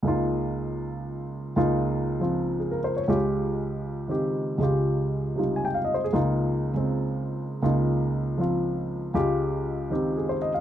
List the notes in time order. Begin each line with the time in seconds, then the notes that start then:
0.03 C#2 C#3 A#3
0.07 D#4 F4
1.56 C#2 C#3 A#3 D#4 F4
2.20 F3 C4 F4
2.59 G#4
2.71 A#4
2.84 C5
2.97 C#5
3.08 C#2 C#3 G#3 F4 G4
4.08 D#3 C4 G4
4.58 C#2 C#3 G#3
4.62 F4 G4
5.36 C3 G3 D#4 F4
5.56 G#5
5.65 G5
5.74 F5
5.85 D#5
5.94 C5
6.04 G#4
6.13 C#2 C#3 A#3 D#4 F4
6.74 C#3 G#3 C4
7.62 C#2 C#3 A#3 D#4 F4
8.38 F3 C4 F4
9.14 C#2 C#3 G#3 F4 G4
9.90 D#3 C4 G4
10.17 G#4
10.29 C5
10.42 D#5
10.54 F5